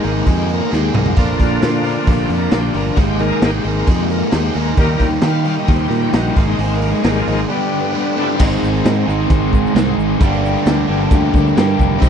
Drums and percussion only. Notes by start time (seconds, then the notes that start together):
0.04 open hi-hat
0.26 kick, open hi-hat
0.49 open hi-hat
0.72 snare
0.94 mid tom
1.06 floor tom
1.16 kick, open hi-hat, splash
1.40 kick, open hi-hat
1.62 snare, open hi-hat
1.84 open hi-hat
2.06 kick, open hi-hat
2.30 open hi-hat
2.51 snare, open hi-hat
2.74 open hi-hat
2.96 kick, open hi-hat
3.19 open hi-hat
3.42 snare, open hi-hat
3.64 open hi-hat
3.87 kick, open hi-hat
4.10 open hi-hat
4.32 snare, open hi-hat
4.54 open hi-hat
4.77 kick, open hi-hat
4.99 kick, open hi-hat
5.21 snare, open hi-hat
5.45 open hi-hat
5.68 kick, open hi-hat
5.91 open hi-hat
6.13 snare, open hi-hat
6.36 kick, open hi-hat
6.59 open hi-hat
6.82 open hi-hat
7.04 snare, open hi-hat
7.28 open hi-hat
8.39 kick, crash, shaker
8.51 shaker
8.64 shaker
8.75 shaker
8.85 snare, crash, shaker
9.09 shaker
9.30 kick, crash, shaker
9.53 kick, shaker
9.66 shaker
9.76 snare, crash, shaker
9.99 shaker
10.20 kick, crash, shaker
10.34 shaker
10.45 shaker
10.57 shaker
10.66 snare, crash, shaker
11.11 kick, crash, shaker
11.34 kick, shaker
11.47 shaker
11.57 snare, crash, shaker
11.79 kick, shaker
12.02 kick, crash, shaker